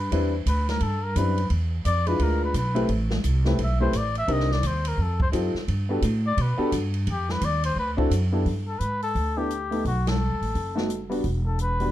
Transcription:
Already playing: G2 B4
0.12 E2 G3 C4 D4 E4 B4, kick, ride
0.46 D2 B4, kick, hi-hat pedal, ride
0.69 A#4, snare, ride
0.80 G2 A4, kick, ride
1.03 A#4
1.16 F#2 G3 C4 D4 E4 B4, kick, hi-hat pedal, ride
1.38 ride
1.50 E2, kick, ride
1.85 F2 D5, kick, hi-hat pedal, ride
2.06 G#3 D4 E4 F4 B4, ride
2.19 D2 A#4, kick, ride
2.44 B4
2.54 B1 B4, kick, hi-hat pedal, ride
2.75 A3 C4 E4 G4 B4, ride
2.89 A1, kick, ride
3.10 snare
3.24 C2, kick, hi-hat pedal, ride
3.45 A3 C4 E4 G4 B4, snare
3.58 B1, kick, ride
3.63 E5
3.80 A3 C4 E4 G4 B4 C5
3.93 A1, kick, hi-hat pedal, ride
3.97 D5
4.15 E5, ride
4.27 C2 C4 D4 D#4 G4 A#4, kick, ride
4.32 D#5
4.40 snare
4.52 D5, snare
4.63 D#2, kick, hi-hat pedal, ride
4.67 C5
4.85 A#4, ride
4.98 F2, kick
5.02 A4
5.20 C5, kick
5.32 F#2 C4 D#4 F4 G4 A4, kick, hi-hat pedal, ride
5.54 muted upright bass stroke, snare
5.68 G2, kick, ride
5.89 B3 D4 F#4 G4 A4
6.02 A2, kick, hi-hat pedal, ride
6.27 D5
6.37 B2, kick, ride
6.42 B4
6.58 B3 D4 F#4 G4 A4, muted upright bass stroke
6.72 G2, kick, hi-hat pedal, ride
6.94 ride
7.07 F2, kick, ride
7.11 G4
7.29 B4, snare
7.41 D#2 D5, kick, hi-hat pedal, ride
7.64 C5, ride
7.76 D2 B4, kick
7.97 C4 D4 E4 F#4 A4, kick
8.11 F#2, hi-hat pedal, ride
8.32 B3 D4 E4 G4 A4
8.46 G2, kick, open hi-hat
8.68 A4
8.79 G#2 B4, closed hi-hat
9.02 A4, open hi-hat
9.15 D2, kick, open hi-hat
9.37 B3 D4 E4 G4 A4
9.51 closed hi-hat
9.71 A3 B3 D#4 A4, open hi-hat
9.85 B1 F#4, kick, open hi-hat
10.07 A4, snare, ride
10.31 D#2
10.41 A1, open hi-hat
10.55 F#1, kick, open hi-hat
10.75 A3 B3 D#4 F#4, snare
10.90 closed hi-hat
11.09 G3 B3 D4 F#4, open hi-hat
11.24 E1, kick, open hi-hat
11.46 A4
11.59 B4, closed hi-hat
11.80 G3 B3 D4 F#4, open hi-hat

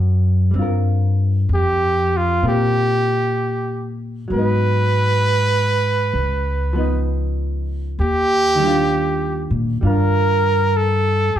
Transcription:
Already playing: F#2
0.51 G2 G3
0.55 C4 F4
0.62 A#4
1.49 F2
1.54 G4
2.17 F4
2.43 A#2 C4 F4 A#4
2.48 G4
4.28 G#2 F#3
4.33 B3 B4
4.38 D#4
6.13 C#2
6.73 F3 B3
6.78 D#4
7.99 D#2 G4
8.55 D#3
8.59 G3
8.63 D4 F4
9.50 A#2
9.81 G2 G3 D4 F4
9.87 A#4
10.77 A4
11.35 muted upright bass stroke

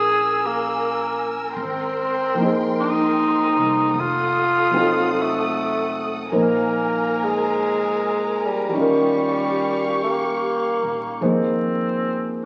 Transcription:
Already playing: A#1 E3 G#3 C#4 F#4 G#4 A#4 G#5 E6
0.46 A#3
1.56 G#1 G5 C6
1.62 C4
2.35 F3 A#3
2.40 D#4 G#4
2.46 C5
2.81 D#4
3.56 C2
3.94 F1 A4 F#5 D#6
3.99 F4
4.71 F#3 C4
4.76 D#4 F4
4.82 A4
5.22 A3
6.32 A#1 F3 A#3 D#4 A#4 C5 G#5
6.38 A#5
6.42 A#3
7.24 G#3
8.46 G3
8.69 G3 C#4
8.74 D#2 D#4 F4 G4 F5 C#6
8.81 A#4
10.04 A#3
10.83 A#1
11.21 G#1 F3 A#3 C4 D#4 G#4 C5

